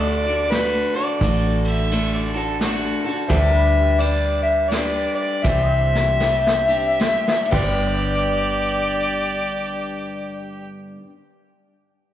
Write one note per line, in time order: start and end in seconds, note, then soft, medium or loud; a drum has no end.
0.00 0.83 D2 medium
0.00 1.22 D3 medium
0.00 0.25 A3 medium
0.00 0.26 D4 medium
0.00 0.26 F#4 medium
0.00 3.26 F#4 medium
0.00 0.25 A4 medium
0.00 3.27 A4 medium
0.00 0.52 D5 loud
0.00 0.08 E5 medium
0.08 3.27 D5 medium
0.26 0.53 D4 soft
0.26 0.53 F#4 soft
0.26 0.52 A4 soft
0.50 0.95 A3 medium
0.50 0.96 D4 medium
0.50 0.94 B4 medium
0.50 snare medium
0.50 ride medium
0.55 0.95 F#4 medium
0.55 0.93 A4 medium
0.94 1.22 D4 soft
0.94 1.22 F#4 soft
0.94 1.21 A4 medium
0.94 1.60 D5 medium
1.21 2.92 A1 medium
1.21 3.30 D3 medium
1.21 1.90 A3 medium
1.21 1.92 D4 medium
1.21 1.92 F#4 medium
1.21 kick loud
1.21 ride medium
1.25 1.93 A4 medium
1.65 2.16 E5 medium
1.65 ride medium
1.91 2.34 A3 medium
1.91 2.35 D4 medium
1.91 2.34 F#4 medium
1.91 2.33 A4 medium
1.91 ride medium
2.14 2.39 D5 medium
2.34 2.61 D4 soft
2.34 2.61 F#4 soft
2.34 2.60 A4 soft
2.34 2.60 A4 medium
2.61 3.04 A3 medium
2.61 3.04 D4 medium
2.61 3.15 F#4 medium
2.61 3.05 F#4 medium
2.61 3.03 A4 medium
2.61 snare medium
2.61 ride medium
3.04 3.31 D4 soft
3.04 3.31 F#4 medium
3.04 3.30 A4 soft
3.29 5.06 D2 medium
3.29 4.00 D3 medium
3.29 3.99 G3 medium
3.29 4.00 D4 medium
3.29 5.42 G4 medium
3.29 4.01 G4 medium
3.29 3.37 A4 medium
3.29 3.57 A4 medium
3.29 4.01 B4 medium
3.29 3.38 C5 medium
3.29 5.44 D5 medium
3.29 4.02 E5 loud
3.29 kick loud
3.29 ride medium
3.57 5.43 B4 medium
3.99 4.70 G3 medium
3.99 4.71 D4 medium
3.99 4.72 G4 medium
3.99 4.72 B4 medium
3.99 4.42 D5 medium
3.99 ride medium
4.43 4.71 E5 medium
4.69 5.44 G3 medium
4.69 5.45 D4 medium
4.69 5.45 G4 medium
4.69 5.14 D5 medium
4.69 snare medium
4.69 ride medium
4.74 5.46 B4 medium
5.15 5.44 D5 medium
5.43 7.15 C2 medium
5.43 6.21 C3 medium
5.43 6.21 E3 medium
5.43 6.19 G3 medium
5.43 6.20 C4 medium
5.43 6.21 D4 medium
5.43 7.51 G4 medium
5.43 6.22 G4 medium
5.43 7.52 C5 medium
5.43 7.51 E5 loud
5.43 kick loud
5.43 snare medium
5.48 5.73 D5 medium
5.73 7.52 E5 medium
5.95 snare medium
6.20 6.70 G3 soft
6.20 6.69 C4 medium
6.20 6.68 D4 medium
6.20 6.67 G4 medium
6.20 snare medium
6.47 snare medium
6.68 6.98 G3 soft
6.68 6.99 C4 soft
6.68 7.00 D4 soft
6.68 7.00 G4 medium
6.99 7.52 G3 medium
6.99 7.52 C4 medium
6.99 7.53 D4 medium
6.99 7.53 G4 medium
6.99 snare medium
7.28 snare medium
7.45 10.95 G2 medium
7.51 10.65 G1 medium
7.51 11.01 D3 medium
7.51 11.05 G3 medium
7.51 7.57 G4 medium
7.51 10.65 G4 loud
7.51 10.66 G4 medium
7.51 7.58 B4 medium
7.51 7.69 C5 medium
7.51 10.64 D5 medium
7.51 kick loud
7.51 crash medium
7.55 11.09 B3 medium
7.55 10.69 D5 medium
7.63 11.13 D4 medium
7.63 11.16 G4 medium
7.69 10.67 B4 medium